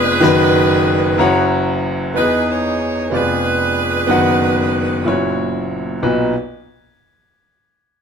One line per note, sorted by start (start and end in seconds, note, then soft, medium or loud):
0.00 0.18 F1 medium
0.00 0.18 F2 medium
0.00 0.14 G#3 medium
0.00 0.15 B3 medium
0.00 0.15 D4 medium
0.00 1.47 D4 medium
0.00 0.15 F4 medium
0.00 1.47 G#4 medium
0.00 0.16 B4 medium
0.00 1.51 B4 loud
0.20 1.15 F#1 medium
0.20 1.15 F#2 medium
0.20 1.11 D#3 loud
0.20 1.12 F#4 loud
0.20 1.13 B4 loud
1.18 2.11 F#1 medium
1.18 2.11 F#2 medium
1.18 2.08 E4 medium
1.18 2.08 F#4 medium
1.18 2.09 C#5 medium
1.18 2.09 F#5 medium
1.18 2.08 A#5 medium
2.14 3.08 E2 medium
2.14 3.08 E3 medium
2.14 3.04 B3 medium
2.14 3.05 D#4 medium
2.14 3.08 D#4 medium
2.14 2.22 F#4 soft
2.14 2.48 G#4 medium
2.14 2.46 B4 medium
2.14 3.06 D#5 medium
2.23 3.09 G#4 medium
2.49 3.09 G#4 medium
2.49 3.12 C#5 medium
3.10 4.05 F1 medium
3.10 4.05 F2 medium
3.10 4.01 B3 medium
3.10 4.02 F4 medium
3.10 3.19 G4 soft
3.10 4.03 D5 medium
3.14 5.35 D4 medium
3.14 5.35 G#4 medium
3.14 5.39 B4 medium
3.19 4.05 G#4 medium
4.07 5.01 F#1 medium
4.07 5.02 F#2 medium
4.07 4.98 D#3 medium
4.07 4.98 B3 medium
4.07 4.99 F#4 medium
4.11 5.00 F#5 loud
5.04 5.99 F#1 medium
5.04 5.99 F#2 medium
5.04 5.95 A#2 medium
5.04 5.95 E4 medium
5.04 5.96 F#4 medium
5.04 5.96 C#5 medium
6.02 6.32 B1 medium
6.02 6.33 A#2 medium
6.02 6.32 D#4 medium
6.02 6.33 F#4 medium
6.02 6.33 B4 medium